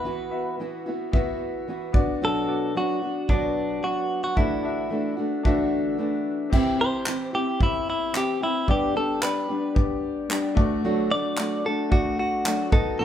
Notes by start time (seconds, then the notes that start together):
Already playing: B3 F#4 B4 E5
0.04 E3 B3 E4 F#4
0.30 B3 F#4 E5
0.59 E3 B3 E4 F#4
0.86 B3 E4 F#4
1.11 E3 B3 E4 F#4 E5, kick
1.16 F#4
1.68 E3 B3 E4 F#4
1.92 B3 D4 F#4 D5, kick
1.97 B3
2.22 B2 F#3 B3 D4 F#4 A4
2.47 B3 F#4 D5
2.75 F#3 B3 D4 F#4
3.02 B3 D4 F#4
3.28 B2 F#3 B3 D4 F#4 D5, kick
3.82 F#3 B3 D4 F#4
4.24 F#4
4.35 D3 E3 A3 D4 E4 F#4 E5, kick
4.63 D4 F#4 E5
4.90 E3 A3 D4 F#4
5.17 A3 D4 F#4
5.43 D3 E3 A3 D4 F#4 E5, kick
5.98 E3 A3 D4 F#4
6.50 C3 E3 C4 E4 G4 E5, kick, crash
6.78 E4 G4 C5
7.06 E3 C4 E4 G4, clap
7.33 C4 E4 G4
7.59 C4 G4 E5, kick
7.63 E4
7.90 E4
8.13 E3 C4 E4 G4, clap
8.17 G4
8.41 C4 E4 G4
8.66 G2 D3 G3 B3 D4 G4 D5, kick
8.71 G4
8.94 G3 B3 D4 G4 A4
9.22 G3 B3 D4 G4 B4, clap
9.49 G3 B3 D4 G4
9.74 B3 G4 D5, kick
10.29 G3 B3 D4 G4, clap
10.55 A3 D4 F#4 D5, kick
10.59 A3
10.84 D3 F#3 A3 D4 F#4
11.11 A3 D4 F#4 D5
11.37 F#3 A3 D4 F#4, clap
11.65 A3 D4 F#4 A4
11.89 A3 F#4 D5, kick
12.19 F#4
12.45 F#3 A3 D4 F#4, clap
12.70 B3 D#4 F#4 A4 D#5, kick
12.99 B2 F#3 B3 D#4 F#4 B4